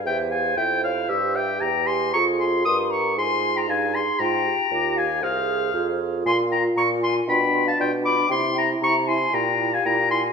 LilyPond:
<<
  \new Staff \with { instrumentName = "Oboe" } { \time 4/4 \key f \minor \tempo 4 = 116 g''8 aes''8 g''8 f''8 e''8 g''8 bes''8 c'''8 | des'''8 c'''8 ees'''8 des'''8 c'''8. bes''16 aes''8 c'''8 | bes''4. aes''8 f''4. r8 | c'''8 bes''8 des'''8 c'''8 b''8. a''16 g''8 d'''8 |
c'''8 bes''8 des'''8 c'''8 bes''8. aes''16 bes''8 c'''8 | }
  \new Staff \with { instrumentName = "Flute" } { \time 4/4 \key f \minor e''8 f''8 e''8 des''8 c''8 e''8 g''8 aes''8 | bes''8 aes''8 c'''8 bes''8 aes''8. g''16 f''8 aes''8 | g''4. f''8 c''4. r8 | aes''8 g''8 bes''8 aes''8 g''8. f''16 d''8 b''8 |
g''8 g''8 bes''8 aes''8 g''8. f''16 g''8 aes''8 | }
  \new Staff \with { instrumentName = "French horn" } { \time 4/4 \key f \minor g'4 e'4 g'4 g'4 | f'4 bes'4 aes'2 | f'8 g'8 f'8 r8 aes'4 f'4~ | f'2 d'2 |
e'2 g'2 | }
  \new Staff \with { instrumentName = "Clarinet" } { \time 4/4 \key f \minor c''2 g'2 | aes'4 g'4 f'4 ees'4 | f'8 r8 g'4 aes'4 aes'4 | f'8 f'8 f'8 f'8 f'8 f'8 f'8 f'8 |
e'8 e'8 e'8 e'8 e'8 e'8 e'8 e'8 | }
  \new Staff \with { instrumentName = "Bassoon" } { \clef bass \time 4/4 \key f \minor e,4 f,4 g,4 e,4 | f,4 g,4 aes,4 g,4 | aes,8 r8 ees,4 c,4 f,4 | bes,4 bes,4 b,4 b,4 |
c4 c4 bes,4 bes,4 | }
>>